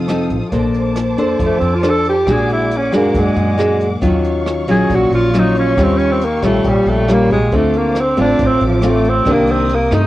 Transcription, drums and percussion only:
0.08 cross-stick, closed hi-hat
0.30 kick, closed hi-hat
0.52 kick, closed hi-hat
0.74 closed hi-hat
0.96 cross-stick, closed hi-hat
1.18 closed hi-hat
1.40 kick, closed hi-hat
1.62 closed hi-hat
1.83 cross-stick, closed hi-hat
2.05 closed hi-hat
2.27 kick, cross-stick, closed hi-hat
2.49 closed hi-hat
2.71 closed hi-hat
2.92 cross-stick, closed hi-hat
3.14 kick, closed hi-hat
3.36 closed hi-hat
3.59 cross-stick, closed hi-hat
3.80 closed hi-hat
4.02 kick, closed hi-hat
4.24 closed hi-hat
4.46 cross-stick, closed hi-hat
4.68 closed hi-hat
4.90 kick, closed hi-hat
5.12 closed hi-hat
5.34 cross-stick, closed hi-hat
5.56 closed hi-hat
5.77 kick, cross-stick, closed hi-hat
5.99 closed hi-hat
6.21 closed hi-hat
6.43 kick, cross-stick, closed hi-hat
6.64 kick, closed hi-hat
6.86 closed hi-hat
7.08 cross-stick, closed hi-hat
7.30 kick, closed hi-hat
7.52 kick, closed hi-hat
7.74 closed hi-hat
7.95 cross-stick, closed hi-hat
8.17 closed hi-hat
8.39 kick, closed hi-hat
8.60 closed hi-hat
8.82 cross-stick, closed hi-hat
9.04 closed hi-hat
9.25 kick, cross-stick, closed hi-hat
9.47 closed hi-hat
9.69 closed hi-hat
9.91 cross-stick, closed hi-hat

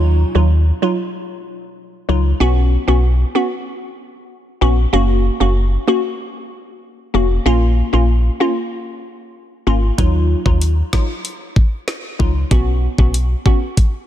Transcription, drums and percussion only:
9.98 kick, closed hi-hat
10.46 kick
10.61 closed hi-hat
10.93 kick, snare
11.25 closed hi-hat
11.56 kick
11.88 cross-stick, snare, closed hi-hat
12.20 kick
12.51 kick, closed hi-hat
12.98 kick
13.14 closed hi-hat
13.46 kick
13.77 kick, closed hi-hat

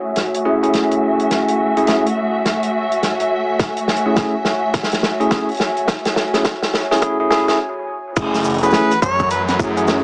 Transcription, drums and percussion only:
0.16 snare, closed hi-hat
0.34 closed hi-hat
0.63 closed hi-hat
0.73 snare, closed hi-hat
0.91 closed hi-hat
1.20 closed hi-hat
1.31 snare, closed hi-hat
1.48 closed hi-hat
1.77 closed hi-hat
1.87 snare, closed hi-hat
2.06 closed hi-hat
2.45 snare, closed hi-hat
2.63 closed hi-hat
2.92 closed hi-hat
3.03 snare, closed hi-hat
3.20 closed hi-hat
3.59 kick, snare, closed hi-hat
3.77 closed hi-hat
3.88 snare
3.96 closed hi-hat
4.16 kick, snare, closed hi-hat
4.45 snare
4.74 kick, snare, closed hi-hat
4.83 snare
4.92 snare, closed hi-hat
5.03 snare
5.20 closed hi-hat
5.31 kick, snare, closed hi-hat
5.49 closed hi-hat
5.51 closed hi-hat
5.54 closed hi-hat
5.57 snare, closed hi-hat
5.77 closed hi-hat
5.88 kick, snare, closed hi-hat
6.05 snare, closed hi-hat
6.16 snare
6.34 snare, closed hi-hat
6.45 kick, snare, closed hi-hat
6.63 snare, closed hi-hat
6.74 snare
6.91 snare
6.96 closed hi-hat
7.02 kick, closed hi-hat
7.31 snare
7.48 snare, closed hi-hat
8.16 kick, closed hi-hat, crash, shaker
8.34 snare, closed hi-hat, shaker
8.37 closed hi-hat
8.40 closed hi-hat
8.42 closed hi-hat, shaker
8.45 closed hi-hat
8.50 closed hi-hat
8.54 closed hi-hat
8.58 closed hi-hat
8.63 closed hi-hat, shaker
8.65 shaker
8.70 snare, closed hi-hat, shaker
8.74 shaker
8.91 closed hi-hat, shaker
9.02 kick, shaker
9.19 kick, shaker
9.30 closed hi-hat, shaker
9.48 snare, closed hi-hat, shaker
9.59 kick, shaker
9.77 closed hi-hat, shaker
9.87 snare, closed hi-hat, shaker

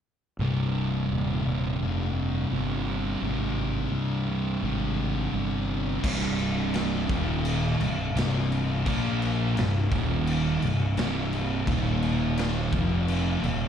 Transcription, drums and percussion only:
6.04 kick, crash
6.39 crash
6.74 snare, crash
7.09 kick, crash
7.45 crash
7.81 crash
8.17 snare, crash
8.52 crash
8.86 kick, crash
9.22 crash
9.57 snare, crash
9.92 kick, crash
10.27 crash
10.62 crash
10.97 snare, crash
11.33 crash
11.67 kick, crash
12.03 crash
12.38 snare, crash
12.73 kick, crash
13.08 crash
13.44 crash

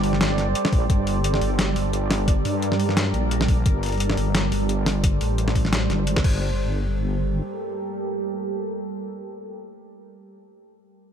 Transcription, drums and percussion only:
0.04 open hi-hat
0.13 snare
0.21 snare, closed hi-hat
0.38 snare, closed hi-hat
0.55 closed hi-hat
0.65 snare
0.72 kick, open hi-hat
0.90 kick, closed hi-hat
1.07 open hi-hat
1.24 closed hi-hat
1.34 snare
1.41 open hi-hat
1.59 snare, closed hi-hat
1.76 open hi-hat
1.93 closed hi-hat
2.11 snare, open hi-hat
2.28 kick, closed hi-hat
2.45 open hi-hat
2.62 closed hi-hat
2.72 snare
2.80 open hi-hat
2.89 snare
2.97 snare, closed hi-hat
3.14 closed hi-hat
3.31 closed hi-hat
3.41 snare
3.48 kick, open hi-hat
3.66 kick, closed hi-hat
3.83 open hi-hat
3.86 open hi-hat
3.89 open hi-hat
3.92 open hi-hat
3.94 open hi-hat
3.98 closed hi-hat, open hi-hat
4.10 snare
4.17 open hi-hat
4.35 snare, closed hi-hat
4.52 open hi-hat
4.69 closed hi-hat
4.86 snare, open hi-hat
5.04 kick, closed hi-hat
5.21 open hi-hat
5.38 closed hi-hat
5.48 snare
5.55 kick, open hi-hat
5.65 snare
5.73 snare, closed hi-hat
5.90 snare, closed hi-hat
6.07 closed hi-hat
6.16 kick, snare
6.24 kick, crash

